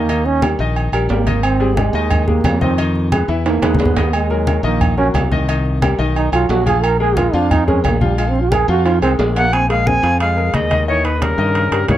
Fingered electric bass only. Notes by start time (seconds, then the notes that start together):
Already playing: D#2
0.59 A#1
0.92 A#1
1.09 G#1
1.93 D#2
2.44 F2
3.28 E2
3.62 E2
3.79 D#2
4.63 A#1
5.14 C2
5.99 B1
6.32 B1
6.49 A#1
7.33 F2
7.84 A#1
8.68 F2
9.02 C2
9.19 A#1
10.03 F2
10.54 D#2
11.38 G2
11.71 G2
11.89 G#2